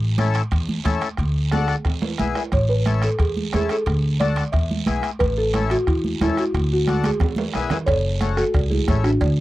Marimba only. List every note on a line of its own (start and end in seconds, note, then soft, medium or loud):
2.53 2.61 C#5 medium
2.69 3.00 B4 medium
3.04 3.21 A4 medium
3.21 3.51 G#4 medium
3.55 3.72 G#4 medium
3.71 4.22 A4 medium
4.20 4.51 D5 loud
4.52 4.84 E5 medium
5.19 5.35 B4 loud
5.38 5.72 A4 loud
5.71 5.88 F#4 medium
5.88 6.21 E4 medium
6.22 6.38 E4 medium
6.39 6.72 F#4 medium
6.73 7.06 F#4 medium
7.06 7.68 G#4 medium
7.86 8.34 A4 medium
7.86 8.33 C#5 loud
8.37 8.69 F#4 medium
8.37 8.68 A4 loud
8.70 9.02 E4 medium
8.70 9.05 G#4 medium
9.03 9.40 D4 medium
9.03 9.40 F#4 medium